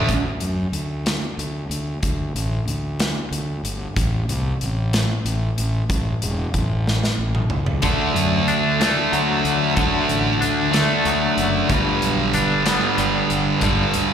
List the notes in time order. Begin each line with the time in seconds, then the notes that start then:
0.09 D2, kick, closed hi-hat
0.40 F#2, closed hi-hat
0.72 D2, closed hi-hat
1.06 snare, closed hi-hat
1.37 D2, closed hi-hat
1.69 D2, closed hi-hat
2.03 D2, kick, closed hi-hat
2.35 A1, closed hi-hat
2.67 D2, closed hi-hat
3.00 snare, closed hi-hat
3.31 D2, closed hi-hat
3.63 G1, closed hi-hat
3.96 A1, kick, closed hi-hat
4.28 C2, closed hi-hat
4.61 A1, closed hi-hat
4.93 snare, closed hi-hat
5.25 A1, closed hi-hat
5.58 A1, closed hi-hat
5.89 A1, kick, closed hi-hat
6.22 E1, closed hi-hat
6.53 A1, kick, closed hi-hat
6.87 snare
7.04 snare
7.18 A1
7.35 mid tom
7.50 C#2, mid tom
7.66 floor tom
7.82 D2 D3 A3, kick, closed hi-hat
7.87 D4
8.14 F#2, closed hi-hat
8.47 D2 D4, closed hi-hat
8.79 A3 D4, snare, closed hi-hat
8.83 D3
9.12 D2 F#3, closed hi-hat
9.44 D2 D3, closed hi-hat
9.76 D2 D3 A3, kick, closed hi-hat
9.81 D4
10.09 A1, closed hi-hat
10.41 D2 D4, closed hi-hat
10.73 A3 D4, snare, closed hi-hat
10.77 D3
11.05 D2 F#3, closed hi-hat
11.37 F#1 D3, closed hi-hat
11.69 G1 G2 D3, kick, closed hi-hat
11.73 G3
12.02 B1, closed hi-hat
12.33 G1 D4, closed hi-hat
12.65 G2 D3 G3 B3, snare, closed hi-hat
12.98 G1 G3, closed hi-hat
13.30 G1 D3, closed hi-hat
13.61 G1 G2 D3 G3, kick, closed hi-hat
13.94 D2, closed hi-hat